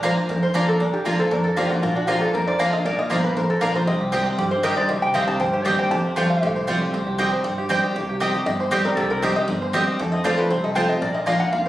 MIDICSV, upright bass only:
0, 0, Header, 1, 2, 480
1, 0, Start_track
1, 0, Tempo, 255319
1, 1515, Time_signature, 4, 2, 24, 8
1, 21973, End_track
2, 0, Start_track
2, 0, Title_t, "Upright bass"
2, 0, Program_c, 0, 32
2, 0, Note_on_c, 0, 34, 91
2, 200, Note_off_c, 0, 34, 0
2, 544, Note_on_c, 0, 41, 84
2, 1157, Note_off_c, 0, 41, 0
2, 1513, Note_on_c, 0, 34, 94
2, 2124, Note_off_c, 0, 34, 0
2, 2474, Note_on_c, 0, 41, 87
2, 3084, Note_off_c, 0, 41, 0
2, 3440, Note_on_c, 0, 34, 100
2, 4049, Note_off_c, 0, 34, 0
2, 4397, Note_on_c, 0, 41, 85
2, 5007, Note_off_c, 0, 41, 0
2, 5359, Note_on_c, 0, 34, 92
2, 5664, Note_off_c, 0, 34, 0
2, 5843, Note_on_c, 0, 31, 81
2, 6249, Note_off_c, 0, 31, 0
2, 6321, Note_on_c, 0, 33, 83
2, 6729, Note_off_c, 0, 33, 0
2, 6808, Note_on_c, 0, 34, 84
2, 7212, Note_off_c, 0, 34, 0
2, 7281, Note_on_c, 0, 36, 93
2, 7889, Note_off_c, 0, 36, 0
2, 8236, Note_on_c, 0, 43, 84
2, 8846, Note_off_c, 0, 43, 0
2, 9193, Note_on_c, 0, 36, 92
2, 9500, Note_off_c, 0, 36, 0
2, 9676, Note_on_c, 0, 36, 83
2, 10085, Note_off_c, 0, 36, 0
2, 10154, Note_on_c, 0, 38, 87
2, 10564, Note_off_c, 0, 38, 0
2, 10638, Note_on_c, 0, 39, 88
2, 11046, Note_off_c, 0, 39, 0
2, 11117, Note_on_c, 0, 41, 98
2, 11726, Note_off_c, 0, 41, 0
2, 12087, Note_on_c, 0, 36, 83
2, 12692, Note_off_c, 0, 36, 0
2, 13045, Note_on_c, 0, 36, 101
2, 13651, Note_off_c, 0, 36, 0
2, 14001, Note_on_c, 0, 43, 86
2, 14608, Note_off_c, 0, 43, 0
2, 14950, Note_on_c, 0, 36, 95
2, 15560, Note_off_c, 0, 36, 0
2, 15910, Note_on_c, 0, 31, 84
2, 16520, Note_off_c, 0, 31, 0
2, 16874, Note_on_c, 0, 36, 100
2, 17483, Note_off_c, 0, 36, 0
2, 17832, Note_on_c, 0, 31, 83
2, 18441, Note_off_c, 0, 31, 0
2, 18792, Note_on_c, 0, 41, 96
2, 19401, Note_off_c, 0, 41, 0
2, 19754, Note_on_c, 0, 36, 86
2, 20362, Note_off_c, 0, 36, 0
2, 20709, Note_on_c, 0, 34, 98
2, 21318, Note_off_c, 0, 34, 0
2, 21669, Note_on_c, 0, 29, 82
2, 21973, Note_off_c, 0, 29, 0
2, 21973, End_track
0, 0, End_of_file